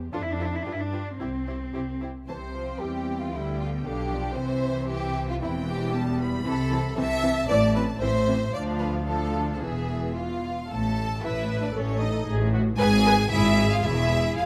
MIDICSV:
0, 0, Header, 1, 6, 480
1, 0, Start_track
1, 0, Key_signature, 0, "major"
1, 0, Tempo, 537634
1, 114, Time_signature, 2, 2, 24, 8
1, 2517, Tempo, 519931
1, 5877, Key_signature, 0, "minor"
1, 7797, Tempo, 541516
1, 9717, Tempo, 526316
1, 13139, End_track
2, 0, Start_track
2, 0, Title_t, "Violin section"
2, 0, Program_c, 0, 48
2, 122, Note_on_c, 0, 72, 55
2, 194, Note_off_c, 0, 72, 0
2, 358, Note_on_c, 0, 72, 47
2, 429, Note_off_c, 0, 72, 0
2, 600, Note_on_c, 0, 71, 43
2, 672, Note_off_c, 0, 71, 0
2, 827, Note_on_c, 0, 71, 41
2, 898, Note_off_c, 0, 71, 0
2, 1069, Note_on_c, 0, 72, 42
2, 1140, Note_off_c, 0, 72, 0
2, 1312, Note_on_c, 0, 72, 41
2, 1383, Note_off_c, 0, 72, 0
2, 1564, Note_on_c, 0, 72, 34
2, 1635, Note_off_c, 0, 72, 0
2, 1792, Note_on_c, 0, 72, 34
2, 1864, Note_off_c, 0, 72, 0
2, 2035, Note_on_c, 0, 81, 50
2, 2106, Note_off_c, 0, 81, 0
2, 2273, Note_on_c, 0, 79, 47
2, 3455, Note_off_c, 0, 79, 0
2, 3473, Note_on_c, 0, 77, 51
2, 3718, Note_off_c, 0, 77, 0
2, 3726, Note_on_c, 0, 74, 47
2, 3961, Note_on_c, 0, 76, 58
2, 3965, Note_off_c, 0, 74, 0
2, 4432, Note_off_c, 0, 76, 0
2, 4442, Note_on_c, 0, 76, 58
2, 4912, Note_off_c, 0, 76, 0
2, 4921, Note_on_c, 0, 79, 70
2, 5390, Note_off_c, 0, 79, 0
2, 5398, Note_on_c, 0, 81, 75
2, 5638, Note_off_c, 0, 81, 0
2, 5642, Note_on_c, 0, 83, 83
2, 6343, Note_off_c, 0, 83, 0
2, 6355, Note_on_c, 0, 81, 88
2, 7294, Note_off_c, 0, 81, 0
2, 7310, Note_on_c, 0, 76, 70
2, 7786, Note_off_c, 0, 76, 0
2, 7797, Note_on_c, 0, 77, 70
2, 8259, Note_off_c, 0, 77, 0
2, 8269, Note_on_c, 0, 77, 59
2, 8740, Note_off_c, 0, 77, 0
2, 8751, Note_on_c, 0, 76, 50
2, 9228, Note_off_c, 0, 76, 0
2, 9245, Note_on_c, 0, 77, 71
2, 9688, Note_off_c, 0, 77, 0
2, 9717, Note_on_c, 0, 81, 87
2, 10196, Note_off_c, 0, 81, 0
2, 10200, Note_on_c, 0, 76, 86
2, 10547, Note_off_c, 0, 76, 0
2, 10566, Note_on_c, 0, 74, 73
2, 10675, Note_on_c, 0, 73, 86
2, 10677, Note_off_c, 0, 74, 0
2, 10902, Note_on_c, 0, 75, 85
2, 10910, Note_off_c, 0, 73, 0
2, 11142, Note_off_c, 0, 75, 0
2, 11608, Note_on_c, 0, 80, 122
2, 12060, Note_off_c, 0, 80, 0
2, 12104, Note_on_c, 0, 76, 126
2, 12466, Note_off_c, 0, 76, 0
2, 12474, Note_on_c, 0, 77, 106
2, 12584, Note_on_c, 0, 76, 110
2, 12591, Note_off_c, 0, 77, 0
2, 13065, Note_on_c, 0, 77, 83
2, 13075, Note_off_c, 0, 76, 0
2, 13139, Note_off_c, 0, 77, 0
2, 13139, End_track
3, 0, Start_track
3, 0, Title_t, "Violin section"
3, 0, Program_c, 1, 48
3, 111, Note_on_c, 1, 69, 53
3, 183, Note_off_c, 1, 69, 0
3, 351, Note_on_c, 1, 69, 49
3, 423, Note_off_c, 1, 69, 0
3, 586, Note_on_c, 1, 67, 46
3, 657, Note_off_c, 1, 67, 0
3, 827, Note_on_c, 1, 67, 42
3, 899, Note_off_c, 1, 67, 0
3, 1078, Note_on_c, 1, 67, 44
3, 1149, Note_off_c, 1, 67, 0
3, 1317, Note_on_c, 1, 67, 38
3, 1388, Note_off_c, 1, 67, 0
3, 1551, Note_on_c, 1, 67, 59
3, 1552, Note_off_c, 1, 67, 0
3, 1552, Note_on_c, 1, 67, 40
3, 1624, Note_off_c, 1, 67, 0
3, 1790, Note_on_c, 1, 67, 35
3, 1861, Note_off_c, 1, 67, 0
3, 2036, Note_on_c, 1, 72, 64
3, 2504, Note_off_c, 1, 72, 0
3, 2510, Note_on_c, 1, 67, 62
3, 2878, Note_off_c, 1, 67, 0
3, 2881, Note_on_c, 1, 65, 59
3, 2998, Note_on_c, 1, 64, 61
3, 3002, Note_off_c, 1, 65, 0
3, 3237, Note_on_c, 1, 65, 64
3, 3241, Note_off_c, 1, 64, 0
3, 3311, Note_off_c, 1, 65, 0
3, 3480, Note_on_c, 1, 67, 74
3, 3952, Note_off_c, 1, 67, 0
3, 3953, Note_on_c, 1, 72, 81
3, 4438, Note_off_c, 1, 72, 0
3, 4438, Note_on_c, 1, 67, 78
3, 4792, Note_off_c, 1, 67, 0
3, 4810, Note_on_c, 1, 65, 72
3, 4856, Note_off_c, 1, 65, 0
3, 4925, Note_on_c, 1, 64, 79
3, 4999, Note_off_c, 1, 64, 0
3, 5158, Note_on_c, 1, 67, 83
3, 5394, Note_off_c, 1, 67, 0
3, 5873, Note_on_c, 1, 69, 86
3, 6320, Note_off_c, 1, 69, 0
3, 6348, Note_on_c, 1, 76, 108
3, 6820, Note_off_c, 1, 76, 0
3, 6827, Note_on_c, 1, 74, 95
3, 7065, Note_off_c, 1, 74, 0
3, 7069, Note_on_c, 1, 71, 90
3, 7143, Note_off_c, 1, 71, 0
3, 7304, Note_on_c, 1, 72, 96
3, 7783, Note_off_c, 1, 72, 0
3, 7795, Note_on_c, 1, 74, 85
3, 7866, Note_off_c, 1, 74, 0
3, 8025, Note_on_c, 1, 71, 77
3, 8096, Note_off_c, 1, 71, 0
3, 8261, Note_on_c, 1, 69, 73
3, 8664, Note_off_c, 1, 69, 0
3, 8674, Note_on_c, 1, 69, 45
3, 8734, Note_on_c, 1, 68, 62
3, 8744, Note_off_c, 1, 69, 0
3, 9218, Note_on_c, 1, 65, 64
3, 9229, Note_off_c, 1, 68, 0
3, 9674, Note_off_c, 1, 65, 0
3, 9704, Note_on_c, 1, 69, 85
3, 10179, Note_off_c, 1, 69, 0
3, 10190, Note_on_c, 1, 64, 80
3, 10540, Note_on_c, 1, 62, 61
3, 10549, Note_off_c, 1, 64, 0
3, 10590, Note_off_c, 1, 62, 0
3, 10666, Note_on_c, 1, 61, 74
3, 10901, Note_off_c, 1, 61, 0
3, 10905, Note_on_c, 1, 63, 72
3, 11144, Note_off_c, 1, 63, 0
3, 11624, Note_on_c, 1, 68, 109
3, 12069, Note_off_c, 1, 68, 0
3, 12100, Note_on_c, 1, 64, 104
3, 12457, Note_off_c, 1, 64, 0
3, 12469, Note_on_c, 1, 65, 87
3, 12586, Note_off_c, 1, 65, 0
3, 12595, Note_on_c, 1, 64, 90
3, 13075, Note_on_c, 1, 65, 80
3, 13080, Note_off_c, 1, 64, 0
3, 13139, Note_off_c, 1, 65, 0
3, 13139, End_track
4, 0, Start_track
4, 0, Title_t, "Viola section"
4, 0, Program_c, 2, 48
4, 112, Note_on_c, 2, 65, 55
4, 184, Note_off_c, 2, 65, 0
4, 346, Note_on_c, 2, 65, 43
4, 418, Note_off_c, 2, 65, 0
4, 595, Note_on_c, 2, 65, 45
4, 666, Note_off_c, 2, 65, 0
4, 828, Note_on_c, 2, 65, 38
4, 900, Note_off_c, 2, 65, 0
4, 1066, Note_on_c, 2, 64, 46
4, 1138, Note_off_c, 2, 64, 0
4, 1314, Note_on_c, 2, 64, 37
4, 1385, Note_off_c, 2, 64, 0
4, 1560, Note_on_c, 2, 64, 35
4, 1632, Note_off_c, 2, 64, 0
4, 1804, Note_on_c, 2, 64, 35
4, 1875, Note_off_c, 2, 64, 0
4, 2041, Note_on_c, 2, 60, 38
4, 2044, Note_on_c, 2, 52, 43
4, 2115, Note_off_c, 2, 52, 0
4, 2276, Note_on_c, 2, 53, 42
4, 2482, Note_off_c, 2, 60, 0
4, 2508, Note_on_c, 2, 55, 42
4, 2510, Note_off_c, 2, 53, 0
4, 2511, Note_on_c, 2, 60, 43
4, 2982, Note_off_c, 2, 55, 0
4, 2989, Note_off_c, 2, 60, 0
4, 2992, Note_on_c, 2, 59, 43
4, 2993, Note_on_c, 2, 55, 43
4, 3469, Note_off_c, 2, 55, 0
4, 3478, Note_off_c, 2, 59, 0
4, 3478, Note_on_c, 2, 50, 48
4, 3478, Note_on_c, 2, 62, 47
4, 3718, Note_on_c, 2, 53, 47
4, 3721, Note_off_c, 2, 50, 0
4, 3956, Note_on_c, 2, 60, 50
4, 3958, Note_on_c, 2, 52, 49
4, 3960, Note_off_c, 2, 62, 0
4, 3961, Note_off_c, 2, 53, 0
4, 4899, Note_off_c, 2, 60, 0
4, 4900, Note_off_c, 2, 52, 0
4, 4915, Note_on_c, 2, 52, 56
4, 4918, Note_on_c, 2, 60, 55
4, 5387, Note_off_c, 2, 52, 0
4, 5388, Note_off_c, 2, 60, 0
4, 5397, Note_on_c, 2, 59, 63
4, 5401, Note_on_c, 2, 55, 63
4, 5867, Note_on_c, 2, 52, 63
4, 5869, Note_on_c, 2, 60, 66
4, 5876, Note_off_c, 2, 59, 0
4, 5878, Note_off_c, 2, 55, 0
4, 5941, Note_off_c, 2, 52, 0
4, 5943, Note_off_c, 2, 60, 0
4, 6110, Note_on_c, 2, 60, 56
4, 6113, Note_on_c, 2, 52, 57
4, 6183, Note_off_c, 2, 60, 0
4, 6187, Note_off_c, 2, 52, 0
4, 6349, Note_on_c, 2, 52, 65
4, 6350, Note_on_c, 2, 60, 62
4, 6423, Note_off_c, 2, 52, 0
4, 6423, Note_off_c, 2, 60, 0
4, 6587, Note_on_c, 2, 52, 58
4, 6588, Note_on_c, 2, 60, 60
4, 6661, Note_off_c, 2, 52, 0
4, 6662, Note_off_c, 2, 60, 0
4, 6829, Note_on_c, 2, 60, 65
4, 6833, Note_on_c, 2, 52, 65
4, 6903, Note_off_c, 2, 60, 0
4, 6907, Note_off_c, 2, 52, 0
4, 7075, Note_on_c, 2, 52, 54
4, 7075, Note_on_c, 2, 60, 58
4, 7149, Note_off_c, 2, 52, 0
4, 7149, Note_off_c, 2, 60, 0
4, 7313, Note_on_c, 2, 52, 58
4, 7315, Note_on_c, 2, 60, 60
4, 7387, Note_off_c, 2, 52, 0
4, 7389, Note_off_c, 2, 60, 0
4, 7560, Note_on_c, 2, 60, 57
4, 7562, Note_on_c, 2, 52, 57
4, 7634, Note_off_c, 2, 60, 0
4, 7636, Note_off_c, 2, 52, 0
4, 7803, Note_on_c, 2, 62, 61
4, 7806, Note_on_c, 2, 53, 62
4, 8238, Note_off_c, 2, 62, 0
4, 8240, Note_off_c, 2, 53, 0
4, 8269, Note_on_c, 2, 53, 51
4, 8269, Note_on_c, 2, 62, 53
4, 8740, Note_off_c, 2, 53, 0
4, 8740, Note_off_c, 2, 62, 0
4, 8751, Note_on_c, 2, 52, 45
4, 8755, Note_on_c, 2, 59, 49
4, 9538, Note_off_c, 2, 52, 0
4, 9540, Note_off_c, 2, 59, 0
4, 10202, Note_on_c, 2, 71, 74
4, 10640, Note_off_c, 2, 71, 0
4, 10669, Note_on_c, 2, 69, 65
4, 11145, Note_off_c, 2, 69, 0
4, 11147, Note_on_c, 2, 68, 78
4, 11378, Note_off_c, 2, 68, 0
4, 11390, Note_on_c, 2, 66, 75
4, 11463, Note_off_c, 2, 66, 0
4, 11631, Note_on_c, 2, 71, 98
4, 11704, Note_off_c, 2, 71, 0
4, 11871, Note_on_c, 2, 71, 91
4, 11944, Note_off_c, 2, 71, 0
4, 12107, Note_on_c, 2, 68, 94
4, 12580, Note_off_c, 2, 68, 0
4, 12595, Note_on_c, 2, 68, 78
4, 13139, Note_off_c, 2, 68, 0
4, 13139, End_track
5, 0, Start_track
5, 0, Title_t, "Cello section"
5, 0, Program_c, 3, 48
5, 116, Note_on_c, 3, 62, 64
5, 187, Note_off_c, 3, 62, 0
5, 190, Note_on_c, 3, 64, 63
5, 261, Note_off_c, 3, 64, 0
5, 263, Note_on_c, 3, 62, 64
5, 334, Note_off_c, 3, 62, 0
5, 334, Note_on_c, 3, 64, 61
5, 405, Note_on_c, 3, 62, 67
5, 406, Note_off_c, 3, 64, 0
5, 471, Note_on_c, 3, 64, 60
5, 477, Note_off_c, 3, 62, 0
5, 542, Note_on_c, 3, 62, 59
5, 547, Note_off_c, 3, 64, 0
5, 618, Note_on_c, 3, 64, 62
5, 619, Note_off_c, 3, 62, 0
5, 692, Note_on_c, 3, 62, 67
5, 694, Note_off_c, 3, 64, 0
5, 1067, Note_on_c, 3, 60, 59
5, 1069, Note_off_c, 3, 62, 0
5, 1787, Note_off_c, 3, 60, 0
5, 2042, Note_on_c, 3, 48, 44
5, 2483, Note_off_c, 3, 48, 0
5, 2514, Note_on_c, 3, 52, 44
5, 2991, Note_off_c, 3, 52, 0
5, 2993, Note_on_c, 3, 50, 49
5, 3475, Note_on_c, 3, 47, 49
5, 3479, Note_off_c, 3, 50, 0
5, 3949, Note_off_c, 3, 47, 0
5, 3956, Note_on_c, 3, 48, 57
5, 4898, Note_off_c, 3, 48, 0
5, 4915, Note_on_c, 3, 40, 64
5, 5874, Note_off_c, 3, 40, 0
5, 5878, Note_on_c, 3, 48, 77
5, 6299, Note_off_c, 3, 48, 0
5, 6350, Note_on_c, 3, 48, 75
5, 6775, Note_off_c, 3, 48, 0
5, 6831, Note_on_c, 3, 45, 78
5, 7255, Note_off_c, 3, 45, 0
5, 7314, Note_on_c, 3, 45, 68
5, 7741, Note_off_c, 3, 45, 0
5, 7796, Note_on_c, 3, 38, 68
5, 8713, Note_off_c, 3, 38, 0
5, 8749, Note_on_c, 3, 40, 55
5, 9537, Note_off_c, 3, 40, 0
5, 9720, Note_on_c, 3, 45, 69
5, 10141, Note_off_c, 3, 45, 0
5, 10196, Note_on_c, 3, 45, 72
5, 10615, Note_off_c, 3, 45, 0
5, 10670, Note_on_c, 3, 45, 73
5, 11089, Note_off_c, 3, 45, 0
5, 11142, Note_on_c, 3, 45, 88
5, 11562, Note_off_c, 3, 45, 0
5, 11615, Note_on_c, 3, 44, 106
5, 12041, Note_off_c, 3, 44, 0
5, 12102, Note_on_c, 3, 44, 103
5, 12530, Note_off_c, 3, 44, 0
5, 12585, Note_on_c, 3, 40, 86
5, 13017, Note_off_c, 3, 40, 0
5, 13072, Note_on_c, 3, 40, 74
5, 13139, Note_off_c, 3, 40, 0
5, 13139, End_track
6, 0, Start_track
6, 0, Title_t, "Double bass section"
6, 0, Program_c, 4, 48
6, 119, Note_on_c, 4, 41, 61
6, 535, Note_off_c, 4, 41, 0
6, 589, Note_on_c, 4, 43, 50
6, 1013, Note_off_c, 4, 43, 0
6, 1073, Note_on_c, 4, 36, 49
6, 1504, Note_off_c, 4, 36, 0
6, 1560, Note_on_c, 4, 36, 46
6, 1988, Note_off_c, 4, 36, 0
6, 2045, Note_on_c, 4, 36, 46
6, 2484, Note_off_c, 4, 36, 0
6, 2513, Note_on_c, 4, 40, 46
6, 2990, Note_off_c, 4, 40, 0
6, 2993, Note_on_c, 4, 38, 46
6, 3477, Note_on_c, 4, 35, 47
6, 3478, Note_off_c, 4, 38, 0
6, 3951, Note_off_c, 4, 35, 0
6, 3964, Note_on_c, 4, 36, 56
6, 4903, Note_off_c, 4, 36, 0
6, 4923, Note_on_c, 4, 28, 68
6, 5878, Note_off_c, 4, 28, 0
6, 5882, Note_on_c, 4, 36, 77
6, 6301, Note_off_c, 4, 36, 0
6, 6357, Note_on_c, 4, 36, 75
6, 6778, Note_off_c, 4, 36, 0
6, 6836, Note_on_c, 4, 33, 82
6, 7258, Note_off_c, 4, 33, 0
6, 7315, Note_on_c, 4, 33, 76
6, 7741, Note_off_c, 4, 33, 0
6, 7799, Note_on_c, 4, 38, 67
6, 8715, Note_off_c, 4, 38, 0
6, 8746, Note_on_c, 4, 28, 56
6, 9536, Note_off_c, 4, 28, 0
6, 9721, Note_on_c, 4, 33, 72
6, 10141, Note_off_c, 4, 33, 0
6, 10196, Note_on_c, 4, 33, 71
6, 10614, Note_off_c, 4, 33, 0
6, 10666, Note_on_c, 4, 33, 75
6, 11087, Note_off_c, 4, 33, 0
6, 11144, Note_on_c, 4, 33, 84
6, 11563, Note_off_c, 4, 33, 0
6, 11624, Note_on_c, 4, 32, 104
6, 12045, Note_off_c, 4, 32, 0
6, 12105, Note_on_c, 4, 32, 100
6, 12531, Note_off_c, 4, 32, 0
6, 12584, Note_on_c, 4, 28, 88
6, 13017, Note_off_c, 4, 28, 0
6, 13074, Note_on_c, 4, 28, 74
6, 13139, Note_off_c, 4, 28, 0
6, 13139, End_track
0, 0, End_of_file